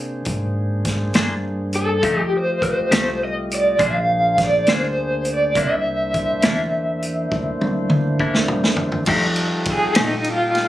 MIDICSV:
0, 0, Header, 1, 7, 480
1, 0, Start_track
1, 0, Tempo, 587084
1, 1666, Time_signature, 12, 3, 24, 8
1, 8732, End_track
2, 0, Start_track
2, 0, Title_t, "Horn section"
2, 0, Program_c, 0, 61
2, 7412, Note_on_c, 0, 67, 66
2, 7412, Note_on_c, 0, 79, 72
2, 7413, Note_on_c, 0, 75, 64
2, 7420, Note_on_c, 0, 69, 69
2, 8732, Note_off_c, 0, 67, 0
2, 8732, Note_off_c, 0, 69, 0
2, 8732, Note_off_c, 0, 75, 0
2, 8732, Note_off_c, 0, 79, 0
2, 8732, End_track
3, 0, Start_track
3, 0, Title_t, "Overdriven electric guitar"
3, 0, Program_c, 1, 29
3, 1435, Note_on_c, 1, 69, 86
3, 1811, Note_off_c, 1, 69, 0
3, 1811, Note_on_c, 1, 67, 86
3, 1925, Note_off_c, 1, 67, 0
3, 1947, Note_on_c, 1, 72, 86
3, 2149, Note_off_c, 1, 72, 0
3, 2158, Note_on_c, 1, 72, 94
3, 2600, Note_off_c, 1, 72, 0
3, 2654, Note_on_c, 1, 75, 99
3, 2715, Note_off_c, 1, 75, 0
3, 2899, Note_on_c, 1, 74, 82
3, 3129, Note_off_c, 1, 74, 0
3, 3150, Note_on_c, 1, 77, 108
3, 3576, Note_off_c, 1, 77, 0
3, 3630, Note_on_c, 1, 74, 90
3, 3855, Note_off_c, 1, 74, 0
3, 3874, Note_on_c, 1, 72, 90
3, 4344, Note_off_c, 1, 72, 0
3, 4359, Note_on_c, 1, 74, 74
3, 4558, Note_off_c, 1, 74, 0
3, 4603, Note_on_c, 1, 76, 82
3, 6942, Note_off_c, 1, 76, 0
3, 7947, Note_on_c, 1, 68, 79
3, 8160, Note_off_c, 1, 68, 0
3, 8177, Note_on_c, 1, 63, 67
3, 8395, Note_off_c, 1, 63, 0
3, 8427, Note_on_c, 1, 65, 87
3, 8732, Note_off_c, 1, 65, 0
3, 8732, End_track
4, 0, Start_track
4, 0, Title_t, "Tonewheel organ"
4, 0, Program_c, 2, 16
4, 0, Note_on_c, 2, 58, 67
4, 0, Note_on_c, 2, 62, 64
4, 0, Note_on_c, 2, 68, 66
4, 0, Note_on_c, 2, 72, 59
4, 1623, Note_off_c, 2, 58, 0
4, 1624, Note_off_c, 2, 62, 0
4, 1627, Note_off_c, 2, 68, 0
4, 1629, Note_off_c, 2, 72, 0
4, 1672, Note_on_c, 2, 57, 60
4, 1672, Note_on_c, 2, 65, 67
4, 1675, Note_on_c, 2, 67, 56
4, 1679, Note_on_c, 2, 75, 59
4, 3095, Note_off_c, 2, 57, 0
4, 3095, Note_off_c, 2, 65, 0
4, 3096, Note_off_c, 2, 67, 0
4, 3097, Note_on_c, 2, 72, 71
4, 3098, Note_off_c, 2, 75, 0
4, 3104, Note_on_c, 2, 58, 72
4, 3107, Note_on_c, 2, 68, 71
4, 3110, Note_on_c, 2, 62, 63
4, 4521, Note_off_c, 2, 62, 0
4, 4527, Note_off_c, 2, 58, 0
4, 4528, Note_off_c, 2, 72, 0
4, 4531, Note_on_c, 2, 62, 57
4, 4533, Note_off_c, 2, 68, 0
4, 4536, Note_on_c, 2, 64, 63
4, 4537, Note_on_c, 2, 58, 66
4, 4539, Note_on_c, 2, 72, 55
4, 7390, Note_off_c, 2, 62, 0
4, 7393, Note_off_c, 2, 58, 0
4, 7393, Note_off_c, 2, 64, 0
4, 7395, Note_off_c, 2, 72, 0
4, 7445, Note_on_c, 2, 63, 59
4, 7446, Note_on_c, 2, 55, 59
4, 7446, Note_on_c, 2, 65, 57
4, 7447, Note_on_c, 2, 69, 57
4, 8732, Note_off_c, 2, 55, 0
4, 8732, Note_off_c, 2, 63, 0
4, 8732, Note_off_c, 2, 65, 0
4, 8732, Note_off_c, 2, 69, 0
4, 8732, End_track
5, 0, Start_track
5, 0, Title_t, "Clean electric guitar"
5, 0, Program_c, 3, 27
5, 945, Note_on_c, 3, 72, 73
5, 948, Note_on_c, 3, 68, 65
5, 953, Note_on_c, 3, 62, 65
5, 961, Note_on_c, 3, 58, 62
5, 1090, Note_off_c, 3, 72, 0
5, 1092, Note_off_c, 3, 68, 0
5, 1094, Note_off_c, 3, 62, 0
5, 1098, Note_off_c, 3, 58, 0
5, 1659, Note_on_c, 3, 53, 67
5, 1669, Note_on_c, 3, 57, 80
5, 1673, Note_on_c, 3, 63, 79
5, 1673, Note_on_c, 3, 67, 75
5, 1807, Note_off_c, 3, 53, 0
5, 1812, Note_off_c, 3, 57, 0
5, 1814, Note_off_c, 3, 63, 0
5, 1814, Note_off_c, 3, 67, 0
5, 2383, Note_on_c, 3, 67, 65
5, 2388, Note_on_c, 3, 63, 61
5, 2393, Note_on_c, 3, 57, 63
5, 2398, Note_on_c, 3, 53, 53
5, 2529, Note_off_c, 3, 67, 0
5, 2531, Note_off_c, 3, 63, 0
5, 2534, Note_off_c, 3, 57, 0
5, 2536, Note_off_c, 3, 53, 0
5, 3099, Note_on_c, 3, 58, 66
5, 3104, Note_on_c, 3, 68, 76
5, 3106, Note_on_c, 3, 62, 82
5, 3109, Note_on_c, 3, 72, 90
5, 3247, Note_off_c, 3, 58, 0
5, 3249, Note_off_c, 3, 68, 0
5, 3250, Note_off_c, 3, 62, 0
5, 3252, Note_off_c, 3, 72, 0
5, 3834, Note_on_c, 3, 72, 75
5, 3837, Note_on_c, 3, 68, 62
5, 3847, Note_on_c, 3, 62, 63
5, 3851, Note_on_c, 3, 58, 57
5, 3974, Note_off_c, 3, 72, 0
5, 3976, Note_off_c, 3, 68, 0
5, 3981, Note_off_c, 3, 62, 0
5, 3983, Note_off_c, 3, 58, 0
5, 4550, Note_on_c, 3, 48, 77
5, 4552, Note_on_c, 3, 58, 66
5, 4558, Note_on_c, 3, 64, 72
5, 4559, Note_on_c, 3, 62, 71
5, 4692, Note_off_c, 3, 48, 0
5, 4693, Note_off_c, 3, 58, 0
5, 4697, Note_off_c, 3, 62, 0
5, 4697, Note_off_c, 3, 64, 0
5, 5261, Note_on_c, 3, 64, 66
5, 5272, Note_on_c, 3, 62, 63
5, 5274, Note_on_c, 3, 58, 54
5, 5281, Note_on_c, 3, 48, 61
5, 5408, Note_off_c, 3, 64, 0
5, 5414, Note_off_c, 3, 62, 0
5, 5415, Note_off_c, 3, 58, 0
5, 5418, Note_off_c, 3, 48, 0
5, 6705, Note_on_c, 3, 64, 74
5, 6707, Note_on_c, 3, 62, 64
5, 6716, Note_on_c, 3, 48, 59
5, 6717, Note_on_c, 3, 58, 56
5, 6850, Note_off_c, 3, 64, 0
5, 6851, Note_off_c, 3, 62, 0
5, 6855, Note_off_c, 3, 48, 0
5, 6856, Note_off_c, 3, 58, 0
5, 7420, Note_on_c, 3, 53, 82
5, 7428, Note_on_c, 3, 63, 87
5, 7429, Note_on_c, 3, 57, 84
5, 7433, Note_on_c, 3, 67, 82
5, 7567, Note_off_c, 3, 53, 0
5, 7572, Note_off_c, 3, 57, 0
5, 7572, Note_off_c, 3, 63, 0
5, 7574, Note_off_c, 3, 67, 0
5, 8143, Note_on_c, 3, 67, 58
5, 8149, Note_on_c, 3, 63, 65
5, 8155, Note_on_c, 3, 57, 63
5, 8159, Note_on_c, 3, 53, 52
5, 8289, Note_off_c, 3, 67, 0
5, 8292, Note_off_c, 3, 63, 0
5, 8295, Note_off_c, 3, 57, 0
5, 8297, Note_off_c, 3, 53, 0
5, 8732, End_track
6, 0, Start_track
6, 0, Title_t, "Upright bass"
6, 0, Program_c, 4, 32
6, 0, Note_on_c, 4, 48, 84
6, 209, Note_off_c, 4, 48, 0
6, 214, Note_on_c, 4, 44, 79
6, 918, Note_off_c, 4, 44, 0
6, 941, Note_on_c, 4, 43, 88
6, 1642, Note_off_c, 4, 43, 0
6, 2380, Note_on_c, 4, 36, 93
6, 3081, Note_off_c, 4, 36, 0
6, 3101, Note_on_c, 4, 34, 94
6, 3802, Note_off_c, 4, 34, 0
6, 3827, Note_on_c, 4, 38, 91
6, 4525, Note_off_c, 4, 38, 0
6, 4539, Note_on_c, 4, 36, 76
6, 5241, Note_off_c, 4, 36, 0
6, 5269, Note_on_c, 4, 40, 86
6, 5967, Note_off_c, 4, 40, 0
6, 5985, Note_on_c, 4, 38, 87
6, 6685, Note_off_c, 4, 38, 0
6, 6703, Note_on_c, 4, 40, 80
6, 7403, Note_off_c, 4, 40, 0
6, 7423, Note_on_c, 4, 41, 76
6, 8123, Note_off_c, 4, 41, 0
6, 8151, Note_on_c, 4, 46, 75
6, 8732, Note_off_c, 4, 46, 0
6, 8732, End_track
7, 0, Start_track
7, 0, Title_t, "Drums"
7, 204, Note_on_c, 9, 42, 68
7, 216, Note_on_c, 9, 36, 91
7, 286, Note_off_c, 9, 42, 0
7, 298, Note_off_c, 9, 36, 0
7, 693, Note_on_c, 9, 42, 59
7, 697, Note_on_c, 9, 36, 79
7, 702, Note_on_c, 9, 38, 35
7, 774, Note_off_c, 9, 42, 0
7, 779, Note_off_c, 9, 36, 0
7, 784, Note_off_c, 9, 38, 0
7, 931, Note_on_c, 9, 42, 67
7, 940, Note_on_c, 9, 38, 97
7, 1012, Note_off_c, 9, 42, 0
7, 1022, Note_off_c, 9, 38, 0
7, 1412, Note_on_c, 9, 42, 52
7, 1493, Note_off_c, 9, 42, 0
7, 1660, Note_on_c, 9, 36, 105
7, 1660, Note_on_c, 9, 42, 81
7, 1741, Note_off_c, 9, 36, 0
7, 1741, Note_off_c, 9, 42, 0
7, 2142, Note_on_c, 9, 36, 68
7, 2147, Note_on_c, 9, 42, 57
7, 2224, Note_off_c, 9, 36, 0
7, 2229, Note_off_c, 9, 42, 0
7, 2385, Note_on_c, 9, 42, 95
7, 2395, Note_on_c, 9, 38, 112
7, 2467, Note_off_c, 9, 42, 0
7, 2477, Note_off_c, 9, 38, 0
7, 2873, Note_on_c, 9, 42, 65
7, 2954, Note_off_c, 9, 42, 0
7, 3099, Note_on_c, 9, 42, 76
7, 3102, Note_on_c, 9, 36, 112
7, 3181, Note_off_c, 9, 42, 0
7, 3184, Note_off_c, 9, 36, 0
7, 3581, Note_on_c, 9, 42, 63
7, 3583, Note_on_c, 9, 36, 82
7, 3591, Note_on_c, 9, 38, 31
7, 3663, Note_off_c, 9, 42, 0
7, 3664, Note_off_c, 9, 36, 0
7, 3672, Note_off_c, 9, 38, 0
7, 3815, Note_on_c, 9, 42, 71
7, 3825, Note_on_c, 9, 38, 91
7, 3897, Note_off_c, 9, 42, 0
7, 3906, Note_off_c, 9, 38, 0
7, 4290, Note_on_c, 9, 42, 57
7, 4372, Note_off_c, 9, 42, 0
7, 4540, Note_on_c, 9, 42, 76
7, 4541, Note_on_c, 9, 36, 93
7, 4621, Note_off_c, 9, 42, 0
7, 4623, Note_off_c, 9, 36, 0
7, 5019, Note_on_c, 9, 42, 49
7, 5023, Note_on_c, 9, 36, 76
7, 5101, Note_off_c, 9, 42, 0
7, 5104, Note_off_c, 9, 36, 0
7, 5251, Note_on_c, 9, 42, 84
7, 5261, Note_on_c, 9, 38, 114
7, 5332, Note_off_c, 9, 42, 0
7, 5342, Note_off_c, 9, 38, 0
7, 5743, Note_on_c, 9, 42, 56
7, 5825, Note_off_c, 9, 42, 0
7, 5982, Note_on_c, 9, 36, 107
7, 6064, Note_off_c, 9, 36, 0
7, 6224, Note_on_c, 9, 48, 62
7, 6306, Note_off_c, 9, 48, 0
7, 6456, Note_on_c, 9, 47, 77
7, 6538, Note_off_c, 9, 47, 0
7, 6700, Note_on_c, 9, 36, 78
7, 6782, Note_off_c, 9, 36, 0
7, 6822, Note_on_c, 9, 38, 74
7, 6904, Note_off_c, 9, 38, 0
7, 6934, Note_on_c, 9, 45, 73
7, 7016, Note_off_c, 9, 45, 0
7, 7063, Note_on_c, 9, 38, 75
7, 7144, Note_off_c, 9, 38, 0
7, 7165, Note_on_c, 9, 43, 99
7, 7247, Note_off_c, 9, 43, 0
7, 7291, Note_on_c, 9, 43, 81
7, 7373, Note_off_c, 9, 43, 0
7, 7408, Note_on_c, 9, 49, 95
7, 7419, Note_on_c, 9, 36, 99
7, 7490, Note_off_c, 9, 49, 0
7, 7501, Note_off_c, 9, 36, 0
7, 7652, Note_on_c, 9, 51, 54
7, 7733, Note_off_c, 9, 51, 0
7, 7893, Note_on_c, 9, 51, 55
7, 7901, Note_on_c, 9, 36, 71
7, 7975, Note_off_c, 9, 51, 0
7, 7982, Note_off_c, 9, 36, 0
7, 8134, Note_on_c, 9, 51, 87
7, 8144, Note_on_c, 9, 38, 114
7, 8216, Note_off_c, 9, 51, 0
7, 8226, Note_off_c, 9, 38, 0
7, 8375, Note_on_c, 9, 51, 60
7, 8457, Note_off_c, 9, 51, 0
7, 8624, Note_on_c, 9, 51, 52
7, 8634, Note_on_c, 9, 38, 27
7, 8706, Note_off_c, 9, 51, 0
7, 8716, Note_off_c, 9, 38, 0
7, 8732, End_track
0, 0, End_of_file